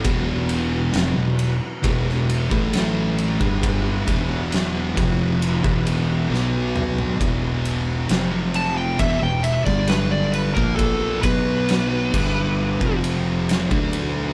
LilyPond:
<<
  \new Staff \with { instrumentName = "Lead electric guitar" } { \time 4/4 \key e \minor \tempo 4 = 67 r1 | r1 | r4. a''16 g''16 e''16 g''16 e''16 d''16 b'16 d''16 b'16 ais'16 | a'8 b'2 r4. | }
  \new Staff \with { instrumentName = "Tonewheel organ" } { \time 4/4 \key e \minor <e fis'>2~ <e fis'>8. <a b'>4 fis''16~ | fis''2. b4 | <e fis'>4 <f g'>4 <e fis'>8. <g a'>4 fis''16~ | fis''8 b'4 e8. <f g'>4 <e fis'>8. | }
  \new Staff \with { instrumentName = "Tonewheel organ" } { \time 4/4 \key e \minor b2~ b8. e'4~ e'16~ | e'2. fis'4 | b4 c'4 b8. d'4 b16~ | b4. b8. c'4 b8. | }
  \new Staff \with { instrumentName = "Distorted electric guitar" } { \clef bass \time 4/4 \key e \minor <e, b, e>4 <f, c>16 <e, b,>8 r16 <e, b, e>8. <a, e a>4 <g, d g>16~ | <g, d g>8 <e, b, e>4 <f, c f>8. <e, b, e>8. <b, fis b>4 | <e, b, e>4 <f, c f>4 <e, b,>16 <e, b,>8 <g, d g>4 <ais, eis ais>16~ | <ais, eis ais>8 <b, fis b>4 <g, d g>8. <f, c f>4 <d a d'>8. | }
  \new Staff \with { instrumentName = "Distorted electric guitar" } { \clef bass \time 4/4 \key e \minor <e, b, e>4 <f, c>16 <e, b,>8 r16 <e, b, e>8. <a, e a>4 <g, d g>16~ | <g, d g>8 <e, b, e>4 <f, c f>8. <e, b, e>8. <b, fis b>4 | <e, b, e>4 <f, c f>4 <e, b,>16 <e, b,>8 <g, d g>4 <ais, eis ais>16~ | <ais, eis ais>8 <b, fis b>4 <g, d g>8. <f, c f>4 <d a d'>8. | }
  \new Staff \with { instrumentName = "Fingered electric bass" } { \clef bass \time 4/4 \key e \minor e,,4 f,,16 e,,8 r16 e,,8. a,,4 g,,16~ | g,,8 e,,4 f,,8. e,,8. b,,4 | e,,4 f,,4 e,,16 e,,8 g,,4 ais,,16~ | ais,,8 b,,4 g,,8. f,,4 d,8. | }
  \new DrumStaff \with { instrumentName = "Drums" } \drummode { \time 4/4 <bd cymr>8 cymr8 <cymr sn>8 cymr8 <bd cymr>16 sn16 cymr16 bd16 <cymr sn>8 cymr16 bd16 | <bd cymr>8 <bd cymr>8 <cymr sn>8 <bd cymr>8 cymr16 bd16 cymr8 sn8 toml16 tomfh16 | <bd cymr>8 cymr8 <cymr sn>8 cymr8 <bd cymr>8 cymr16 <bd sn>16 <cymr sn>8 cymr16 bd16 | <bd cymr>8 <bd cymr>8 <cymr sn>8 <cymc bd>8 r16 bd16 cymr8 <cymr sn>16 bd16 cymr8 | }
>>